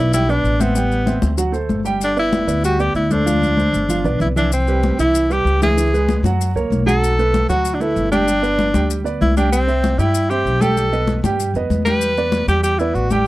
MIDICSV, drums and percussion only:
0, 0, Header, 1, 2, 480
1, 0, Start_track
1, 0, Tempo, 312826
1, 1157, Time_signature, 4, 2, 24, 8
1, 20363, End_track
2, 0, Start_track
2, 0, Title_t, "Drums"
2, 202, Note_on_c, 9, 70, 87
2, 209, Note_on_c, 9, 63, 33
2, 356, Note_off_c, 9, 70, 0
2, 362, Note_off_c, 9, 63, 0
2, 449, Note_on_c, 9, 70, 28
2, 452, Note_on_c, 9, 63, 32
2, 603, Note_off_c, 9, 70, 0
2, 605, Note_off_c, 9, 63, 0
2, 681, Note_on_c, 9, 63, 32
2, 689, Note_on_c, 9, 70, 26
2, 834, Note_off_c, 9, 63, 0
2, 842, Note_off_c, 9, 70, 0
2, 928, Note_on_c, 9, 63, 86
2, 928, Note_on_c, 9, 70, 67
2, 1081, Note_off_c, 9, 63, 0
2, 1082, Note_off_c, 9, 70, 0
2, 1157, Note_on_c, 9, 70, 84
2, 1187, Note_on_c, 9, 63, 32
2, 1311, Note_off_c, 9, 70, 0
2, 1340, Note_off_c, 9, 63, 0
2, 1408, Note_on_c, 9, 70, 27
2, 1416, Note_on_c, 9, 63, 32
2, 1562, Note_off_c, 9, 70, 0
2, 1569, Note_off_c, 9, 63, 0
2, 1641, Note_on_c, 9, 70, 30
2, 1642, Note_on_c, 9, 63, 88
2, 1795, Note_off_c, 9, 63, 0
2, 1795, Note_off_c, 9, 70, 0
2, 1872, Note_on_c, 9, 63, 87
2, 1882, Note_on_c, 9, 70, 68
2, 2026, Note_off_c, 9, 63, 0
2, 2036, Note_off_c, 9, 70, 0
2, 2115, Note_on_c, 9, 70, 89
2, 2127, Note_on_c, 9, 63, 37
2, 2268, Note_off_c, 9, 70, 0
2, 2280, Note_off_c, 9, 63, 0
2, 2359, Note_on_c, 9, 70, 27
2, 2376, Note_on_c, 9, 63, 36
2, 2513, Note_off_c, 9, 70, 0
2, 2529, Note_off_c, 9, 63, 0
2, 2598, Note_on_c, 9, 63, 83
2, 2606, Note_on_c, 9, 70, 28
2, 2752, Note_off_c, 9, 63, 0
2, 2759, Note_off_c, 9, 70, 0
2, 2845, Note_on_c, 9, 70, 68
2, 2999, Note_off_c, 9, 70, 0
2, 3074, Note_on_c, 9, 63, 34
2, 3086, Note_on_c, 9, 70, 84
2, 3228, Note_off_c, 9, 63, 0
2, 3240, Note_off_c, 9, 70, 0
2, 3320, Note_on_c, 9, 63, 32
2, 3332, Note_on_c, 9, 70, 27
2, 3474, Note_off_c, 9, 63, 0
2, 3486, Note_off_c, 9, 70, 0
2, 3568, Note_on_c, 9, 70, 29
2, 3570, Note_on_c, 9, 63, 89
2, 3721, Note_off_c, 9, 70, 0
2, 3724, Note_off_c, 9, 63, 0
2, 3810, Note_on_c, 9, 63, 33
2, 3812, Note_on_c, 9, 70, 68
2, 3963, Note_off_c, 9, 63, 0
2, 3966, Note_off_c, 9, 70, 0
2, 4054, Note_on_c, 9, 63, 36
2, 4055, Note_on_c, 9, 70, 87
2, 4207, Note_off_c, 9, 63, 0
2, 4208, Note_off_c, 9, 70, 0
2, 4291, Note_on_c, 9, 70, 29
2, 4295, Note_on_c, 9, 63, 35
2, 4445, Note_off_c, 9, 70, 0
2, 4449, Note_off_c, 9, 63, 0
2, 4528, Note_on_c, 9, 70, 27
2, 4533, Note_on_c, 9, 63, 32
2, 4682, Note_off_c, 9, 70, 0
2, 4686, Note_off_c, 9, 63, 0
2, 4768, Note_on_c, 9, 70, 63
2, 4776, Note_on_c, 9, 63, 81
2, 4921, Note_off_c, 9, 70, 0
2, 4929, Note_off_c, 9, 63, 0
2, 5012, Note_on_c, 9, 63, 76
2, 5020, Note_on_c, 9, 70, 84
2, 5166, Note_off_c, 9, 63, 0
2, 5174, Note_off_c, 9, 70, 0
2, 5245, Note_on_c, 9, 63, 96
2, 5267, Note_on_c, 9, 70, 29
2, 5399, Note_off_c, 9, 63, 0
2, 5420, Note_off_c, 9, 70, 0
2, 5485, Note_on_c, 9, 63, 77
2, 5513, Note_on_c, 9, 70, 30
2, 5639, Note_off_c, 9, 63, 0
2, 5667, Note_off_c, 9, 70, 0
2, 5737, Note_on_c, 9, 70, 65
2, 5891, Note_off_c, 9, 70, 0
2, 5965, Note_on_c, 9, 64, 72
2, 5979, Note_on_c, 9, 70, 84
2, 6118, Note_off_c, 9, 64, 0
2, 6133, Note_off_c, 9, 70, 0
2, 6205, Note_on_c, 9, 64, 85
2, 6218, Note_on_c, 9, 70, 28
2, 6358, Note_off_c, 9, 64, 0
2, 6372, Note_off_c, 9, 70, 0
2, 6445, Note_on_c, 9, 64, 98
2, 6461, Note_on_c, 9, 70, 29
2, 6599, Note_off_c, 9, 64, 0
2, 6614, Note_off_c, 9, 70, 0
2, 6690, Note_on_c, 9, 64, 76
2, 6705, Note_on_c, 9, 70, 62
2, 6843, Note_off_c, 9, 64, 0
2, 6859, Note_off_c, 9, 70, 0
2, 6934, Note_on_c, 9, 63, 34
2, 6939, Note_on_c, 9, 70, 81
2, 7088, Note_off_c, 9, 63, 0
2, 7093, Note_off_c, 9, 70, 0
2, 7174, Note_on_c, 9, 70, 29
2, 7177, Note_on_c, 9, 63, 31
2, 7328, Note_off_c, 9, 70, 0
2, 7331, Note_off_c, 9, 63, 0
2, 7412, Note_on_c, 9, 70, 29
2, 7419, Note_on_c, 9, 63, 86
2, 7565, Note_off_c, 9, 70, 0
2, 7572, Note_off_c, 9, 63, 0
2, 7659, Note_on_c, 9, 70, 67
2, 7812, Note_off_c, 9, 70, 0
2, 7898, Note_on_c, 9, 70, 88
2, 7903, Note_on_c, 9, 63, 37
2, 8051, Note_off_c, 9, 70, 0
2, 8056, Note_off_c, 9, 63, 0
2, 8134, Note_on_c, 9, 63, 36
2, 8143, Note_on_c, 9, 70, 29
2, 8287, Note_off_c, 9, 63, 0
2, 8296, Note_off_c, 9, 70, 0
2, 8384, Note_on_c, 9, 63, 35
2, 8390, Note_on_c, 9, 70, 29
2, 8537, Note_off_c, 9, 63, 0
2, 8543, Note_off_c, 9, 70, 0
2, 8622, Note_on_c, 9, 70, 64
2, 8628, Note_on_c, 9, 63, 82
2, 8775, Note_off_c, 9, 70, 0
2, 8781, Note_off_c, 9, 63, 0
2, 8858, Note_on_c, 9, 63, 35
2, 8869, Note_on_c, 9, 70, 79
2, 9012, Note_off_c, 9, 63, 0
2, 9022, Note_off_c, 9, 70, 0
2, 9101, Note_on_c, 9, 63, 33
2, 9118, Note_on_c, 9, 70, 28
2, 9254, Note_off_c, 9, 63, 0
2, 9271, Note_off_c, 9, 70, 0
2, 9338, Note_on_c, 9, 63, 90
2, 9354, Note_on_c, 9, 70, 31
2, 9491, Note_off_c, 9, 63, 0
2, 9507, Note_off_c, 9, 70, 0
2, 9577, Note_on_c, 9, 63, 89
2, 9594, Note_on_c, 9, 70, 69
2, 9730, Note_off_c, 9, 63, 0
2, 9747, Note_off_c, 9, 70, 0
2, 9821, Note_on_c, 9, 63, 37
2, 9835, Note_on_c, 9, 70, 92
2, 9975, Note_off_c, 9, 63, 0
2, 9989, Note_off_c, 9, 70, 0
2, 10063, Note_on_c, 9, 63, 37
2, 10079, Note_on_c, 9, 70, 28
2, 10216, Note_off_c, 9, 63, 0
2, 10232, Note_off_c, 9, 70, 0
2, 10310, Note_on_c, 9, 63, 86
2, 10314, Note_on_c, 9, 70, 29
2, 10463, Note_off_c, 9, 63, 0
2, 10468, Note_off_c, 9, 70, 0
2, 10539, Note_on_c, 9, 63, 73
2, 10559, Note_on_c, 9, 70, 66
2, 10692, Note_off_c, 9, 63, 0
2, 10712, Note_off_c, 9, 70, 0
2, 10788, Note_on_c, 9, 63, 34
2, 10800, Note_on_c, 9, 70, 83
2, 10941, Note_off_c, 9, 63, 0
2, 10953, Note_off_c, 9, 70, 0
2, 11031, Note_on_c, 9, 63, 33
2, 11037, Note_on_c, 9, 70, 27
2, 11184, Note_off_c, 9, 63, 0
2, 11190, Note_off_c, 9, 70, 0
2, 11264, Note_on_c, 9, 63, 92
2, 11268, Note_on_c, 9, 70, 29
2, 11418, Note_off_c, 9, 63, 0
2, 11422, Note_off_c, 9, 70, 0
2, 11499, Note_on_c, 9, 70, 64
2, 11512, Note_on_c, 9, 63, 36
2, 11653, Note_off_c, 9, 70, 0
2, 11666, Note_off_c, 9, 63, 0
2, 11738, Note_on_c, 9, 70, 82
2, 11746, Note_on_c, 9, 63, 38
2, 11891, Note_off_c, 9, 70, 0
2, 11899, Note_off_c, 9, 63, 0
2, 11982, Note_on_c, 9, 70, 30
2, 11992, Note_on_c, 9, 63, 36
2, 12135, Note_off_c, 9, 70, 0
2, 12146, Note_off_c, 9, 63, 0
2, 12220, Note_on_c, 9, 70, 27
2, 12226, Note_on_c, 9, 63, 36
2, 12374, Note_off_c, 9, 70, 0
2, 12379, Note_off_c, 9, 63, 0
2, 12462, Note_on_c, 9, 70, 67
2, 12465, Note_on_c, 9, 63, 81
2, 12616, Note_off_c, 9, 70, 0
2, 12619, Note_off_c, 9, 63, 0
2, 12703, Note_on_c, 9, 70, 86
2, 12713, Note_on_c, 9, 63, 34
2, 12857, Note_off_c, 9, 70, 0
2, 12867, Note_off_c, 9, 63, 0
2, 12943, Note_on_c, 9, 63, 33
2, 12944, Note_on_c, 9, 70, 28
2, 13096, Note_off_c, 9, 63, 0
2, 13098, Note_off_c, 9, 70, 0
2, 13177, Note_on_c, 9, 63, 96
2, 13192, Note_on_c, 9, 70, 30
2, 13330, Note_off_c, 9, 63, 0
2, 13345, Note_off_c, 9, 70, 0
2, 13414, Note_on_c, 9, 63, 95
2, 13423, Note_on_c, 9, 70, 70
2, 13567, Note_off_c, 9, 63, 0
2, 13576, Note_off_c, 9, 70, 0
2, 13664, Note_on_c, 9, 70, 85
2, 13670, Note_on_c, 9, 63, 37
2, 13817, Note_off_c, 9, 70, 0
2, 13823, Note_off_c, 9, 63, 0
2, 13903, Note_on_c, 9, 70, 29
2, 13913, Note_on_c, 9, 63, 35
2, 14057, Note_off_c, 9, 70, 0
2, 14066, Note_off_c, 9, 63, 0
2, 14142, Note_on_c, 9, 70, 27
2, 14143, Note_on_c, 9, 63, 81
2, 14295, Note_off_c, 9, 70, 0
2, 14296, Note_off_c, 9, 63, 0
2, 14375, Note_on_c, 9, 63, 74
2, 14377, Note_on_c, 9, 70, 68
2, 14528, Note_off_c, 9, 63, 0
2, 14530, Note_off_c, 9, 70, 0
2, 14609, Note_on_c, 9, 63, 36
2, 14621, Note_on_c, 9, 70, 86
2, 14763, Note_off_c, 9, 63, 0
2, 14775, Note_off_c, 9, 70, 0
2, 14848, Note_on_c, 9, 63, 34
2, 14861, Note_on_c, 9, 70, 30
2, 15002, Note_off_c, 9, 63, 0
2, 15015, Note_off_c, 9, 70, 0
2, 15094, Note_on_c, 9, 63, 89
2, 15096, Note_on_c, 9, 70, 29
2, 15248, Note_off_c, 9, 63, 0
2, 15249, Note_off_c, 9, 70, 0
2, 15333, Note_on_c, 9, 70, 65
2, 15486, Note_off_c, 9, 70, 0
2, 15568, Note_on_c, 9, 70, 92
2, 15569, Note_on_c, 9, 63, 35
2, 15721, Note_off_c, 9, 70, 0
2, 15723, Note_off_c, 9, 63, 0
2, 15809, Note_on_c, 9, 63, 37
2, 15814, Note_on_c, 9, 70, 29
2, 15962, Note_off_c, 9, 63, 0
2, 15967, Note_off_c, 9, 70, 0
2, 16046, Note_on_c, 9, 63, 33
2, 16059, Note_on_c, 9, 70, 28
2, 16200, Note_off_c, 9, 63, 0
2, 16212, Note_off_c, 9, 70, 0
2, 16283, Note_on_c, 9, 63, 86
2, 16288, Note_on_c, 9, 70, 69
2, 16436, Note_off_c, 9, 63, 0
2, 16441, Note_off_c, 9, 70, 0
2, 16513, Note_on_c, 9, 63, 34
2, 16527, Note_on_c, 9, 70, 84
2, 16667, Note_off_c, 9, 63, 0
2, 16680, Note_off_c, 9, 70, 0
2, 16760, Note_on_c, 9, 63, 33
2, 16773, Note_on_c, 9, 70, 28
2, 16914, Note_off_c, 9, 63, 0
2, 16926, Note_off_c, 9, 70, 0
2, 16993, Note_on_c, 9, 63, 89
2, 17012, Note_on_c, 9, 70, 30
2, 17147, Note_off_c, 9, 63, 0
2, 17165, Note_off_c, 9, 70, 0
2, 17245, Note_on_c, 9, 63, 97
2, 17252, Note_on_c, 9, 70, 68
2, 17398, Note_off_c, 9, 63, 0
2, 17406, Note_off_c, 9, 70, 0
2, 17483, Note_on_c, 9, 63, 36
2, 17488, Note_on_c, 9, 70, 85
2, 17636, Note_off_c, 9, 63, 0
2, 17642, Note_off_c, 9, 70, 0
2, 17721, Note_on_c, 9, 63, 34
2, 17722, Note_on_c, 9, 70, 29
2, 17875, Note_off_c, 9, 63, 0
2, 17876, Note_off_c, 9, 70, 0
2, 17956, Note_on_c, 9, 63, 83
2, 17966, Note_on_c, 9, 70, 28
2, 18109, Note_off_c, 9, 63, 0
2, 18120, Note_off_c, 9, 70, 0
2, 18195, Note_on_c, 9, 70, 64
2, 18202, Note_on_c, 9, 63, 72
2, 18348, Note_off_c, 9, 70, 0
2, 18355, Note_off_c, 9, 63, 0
2, 18431, Note_on_c, 9, 70, 85
2, 18441, Note_on_c, 9, 63, 33
2, 18584, Note_off_c, 9, 70, 0
2, 18594, Note_off_c, 9, 63, 0
2, 18675, Note_on_c, 9, 63, 34
2, 18679, Note_on_c, 9, 70, 27
2, 18829, Note_off_c, 9, 63, 0
2, 18832, Note_off_c, 9, 70, 0
2, 18905, Note_on_c, 9, 63, 92
2, 18914, Note_on_c, 9, 70, 29
2, 19058, Note_off_c, 9, 63, 0
2, 19067, Note_off_c, 9, 70, 0
2, 19143, Note_on_c, 9, 63, 36
2, 19154, Note_on_c, 9, 70, 65
2, 19297, Note_off_c, 9, 63, 0
2, 19307, Note_off_c, 9, 70, 0
2, 19390, Note_on_c, 9, 70, 87
2, 19402, Note_on_c, 9, 63, 36
2, 19543, Note_off_c, 9, 70, 0
2, 19555, Note_off_c, 9, 63, 0
2, 19626, Note_on_c, 9, 63, 35
2, 19632, Note_on_c, 9, 70, 29
2, 19779, Note_off_c, 9, 63, 0
2, 19786, Note_off_c, 9, 70, 0
2, 19875, Note_on_c, 9, 70, 27
2, 19876, Note_on_c, 9, 63, 36
2, 20029, Note_off_c, 9, 70, 0
2, 20030, Note_off_c, 9, 63, 0
2, 20108, Note_on_c, 9, 70, 69
2, 20109, Note_on_c, 9, 63, 88
2, 20261, Note_off_c, 9, 70, 0
2, 20263, Note_off_c, 9, 63, 0
2, 20363, End_track
0, 0, End_of_file